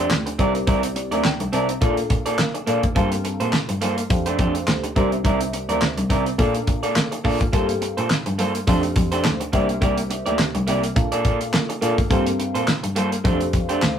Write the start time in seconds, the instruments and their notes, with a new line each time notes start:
Already playing: fm electric piano C4 F4 G4 A4 D5, clean electric guitar C5
0.10 cello D2, muted clean electric guitar stroke, snare, clap
0.26 muted clean electric guitar stroke, closed hi-hat
0.39 cello C2, clean electric guitar C4 E4 A#4 D5, fm electric piano C4 E4 G4 A#4 D5, kick, closed hi-hat
0.55 muted clean electric guitar stroke, closed hi-hat
0.67 cello C2, clean electric guitar C4 E4 A#4 D5, kick, closed hi-hat
0.83 muted clean electric guitar stroke, closed hi-hat
0.96 muted clean electric guitar stroke, closed hi-hat
1.11 cello D2, clean electric guitar C4 E4 A#4 D5, closed hi-hat
1.24 fm electric piano G5, snare, clap
1.40 cello C2, muted clean electric guitar stroke, closed hi-hat
1.53 cello C3, clean electric guitar C4 E4 A#4 D5, fm electric piano A5, closed hi-hat
1.69 fm electric piano A#5, muted clean electric guitar stroke, closed hi-hat
1.81 cello A#2, clean electric guitar A#3 F4 A4 D5, fm electric piano D4 F4 A4 A#4 F5, kick, closed hi-hat
1.97 muted clean electric guitar stroke, closed hi-hat
2.10 cello A#2, muted clean electric guitar stroke, kick, closed hi-hat
2.26 clean electric guitar A#3 F4 A4 D5, closed hi-hat
2.38 cello A#3, muted clean electric guitar stroke, snare, clap
2.54 muted clean electric guitar stroke, closed hi-hat
2.67 cello A#2, clean electric guitar A#3 F4 A4 D5, fm electric piano D4 F4 A4 A#4 F5, closed hi-hat
2.83 cello G#2, muted clean electric guitar stroke, kick, closed hi-hat
2.95 cello G2, clean electric guitar A#3 F4 A4 C5, fm electric piano C4 G4 A4 A#4 F5, kick, closed hi-hat
3.11 muted clean electric guitar stroke, closed hi-hat
3.24 muted clean electric guitar stroke, closed hi-hat
3.40 cello A#2, clean electric guitar A#3 F4 A4 C5, closed hi-hat
3.53 snare, clap
3.69 cello G2, muted clean electric guitar stroke, closed hi-hat
3.81 cello G3, clean electric guitar A#3 F4 A4 C5, closed hi-hat
3.98 muted clean electric guitar stroke, closed hi-hat
4.10 cello F2, fm electric piano D4 G4 A4 C5 F5, muted clean electric guitar stroke, kick, closed hi-hat
4.26 clean electric guitar A3 D4 G4 C5, closed hi-hat
4.39 cello F2, clean electric guitar A3 D4 G4 C5, kick, closed hi-hat
4.55 muted clean electric guitar stroke, closed hi-hat
4.67 cello D2, muted clean electric guitar stroke, snare, clap
4.83 muted clean electric guitar stroke, closed hi-hat
4.96 cello C2, clean electric guitar C4 E4 A#4 D5, fm electric piano D4 G4 A#4 C5 E5, kick, closed hi-hat
5.12 muted clean electric guitar stroke, closed hi-hat
5.24 cello C2, clean electric guitar C4 E4 A#4 D5, kick, closed hi-hat
5.40 muted clean electric guitar stroke, closed hi-hat
5.53 muted clean electric guitar stroke, closed hi-hat
5.69 cello D2, clean electric guitar C4 E4 A#4 D5, closed hi-hat
5.82 snare, clap
5.97 cello C2, muted clean electric guitar stroke, closed hi-hat
6.10 cello C3, clean electric guitar C4 E4 A#4 D5, kick, closed hi-hat
6.26 muted clean electric guitar stroke, closed hi-hat
6.38 cello A#2, clean electric guitar A#3 F4 A4 D5, fm electric piano D4 F4 A4 A#4 F5, kick, closed hi-hat
6.55 muted clean electric guitar stroke, closed hi-hat
6.67 cello A#2, muted clean electric guitar stroke, kick, closed hi-hat
6.83 clean electric guitar A#3 F4 A4 D5, closed hi-hat
6.96 cello A#3, muted clean electric guitar stroke, snare, clap
7.12 muted clean electric guitar stroke, closed hi-hat
7.24 cello A#2, clean electric guitar A#3 F4 A4 D5, fm electric piano D4 F4 A4 A#4 F5, kick, open hi-hat
7.40 cello G#2, muted clean electric guitar stroke, kick, closed hi-hat
7.53 cello G2, clean electric guitar A#3 F4 A4 C5, fm electric piano C4 G4 A4 A#4 F5, kick, closed hi-hat
7.69 muted clean electric guitar stroke, closed hi-hat
7.81 muted clean electric guitar stroke, closed hi-hat
7.97 cello A#2, clean electric guitar A#3 F4 A4 C5, closed hi-hat
8.10 snare, clap
8.26 cello G2, muted clean electric guitar stroke, closed hi-hat
8.38 cello G3, clean electric guitar A#3 F4 A4 C5, closed hi-hat
8.55 muted clean electric guitar stroke, closed hi-hat
8.67 cello F2, clean electric guitar A3 D4 G4 C5, fm electric piano D4 G4 A4 C5 F5, kick, closed hi-hat
8.83 muted clean electric guitar stroke, closed hi-hat
8.96 cello F2, muted clean electric guitar stroke, kick, closed hi-hat
9.12 clean electric guitar A3 D4 G4 C5, closed hi-hat
9.24 cello D2, muted clean electric guitar stroke, snare, clap
9.40 muted clean electric guitar stroke, closed hi-hat
9.53 cello C2, clean electric guitar A#3 E4 G4 D5, fm electric piano D4 G4 A#4 C5 E5, kick, closed hi-hat
9.69 muted clean electric guitar stroke, closed hi-hat
9.81 cello C2, clean electric guitar A#3 E4 G4 D5, kick, closed hi-hat
9.97 muted clean electric guitar stroke, closed hi-hat
10.10 muted clean electric guitar stroke, closed hi-hat
10.26 cello D2, clean electric guitar A#3 E4 G4 D5, closed hi-hat
10.39 snare, clap
10.55 cello C2, muted clean electric guitar stroke, closed hi-hat
10.67 cello C3, clean electric guitar A#3 E4 G4 D5, closed hi-hat
10.83 muted clean electric guitar stroke, closed hi-hat
10.96 cello A#2, fm electric piano D4 F4 A4 A#4 F5, muted clean electric guitar stroke, kick, closed hi-hat
11.12 clean electric guitar A#3 F4 A4 D5, closed hi-hat
11.24 cello A#2, clean electric guitar A#3 F4 A4 D5, kick, closed hi-hat
11.41 muted clean electric guitar stroke, closed hi-hat
11.53 cello A#3, muted clean electric guitar stroke, snare, clap
11.69 muted clean electric guitar stroke, closed hi-hat
11.81 cello A#2, clean electric guitar A#3 F4 A4 D5, fm electric piano D4 F4 A4 A#4 F5, closed hi-hat
11.98 cello G#2, muted clean electric guitar stroke, kick, closed hi-hat
12.10 cello G2, clean electric guitar A#3 F4 A4 C5, fm electric piano C4 G4 A4 A#4 F5, kick, closed hi-hat
12.26 muted clean electric guitar stroke, closed hi-hat
12.39 muted clean electric guitar stroke, closed hi-hat
12.55 cello A#2, clean electric guitar A#3 F4 A4 C5, closed hi-hat
12.68 snare, clap
12.83 cello G2, muted clean electric guitar stroke, closed hi-hat
12.96 cello G3, clean electric guitar A#3 F4 A4 C5, closed hi-hat
13.12 muted clean electric guitar stroke, closed hi-hat
13.24 cello F2, clean electric guitar A3 D4 G4 C5, fm electric piano D4 G4 A4 C5 F5, kick, closed hi-hat
13.40 muted clean electric guitar stroke, closed hi-hat
13.53 cello F2, muted clean electric guitar stroke, kick, closed hi-hat
13.69 clean electric guitar A3 D4 G4 C5, closed hi-hat
13.82 cello D2, muted clean electric guitar stroke, snare, clap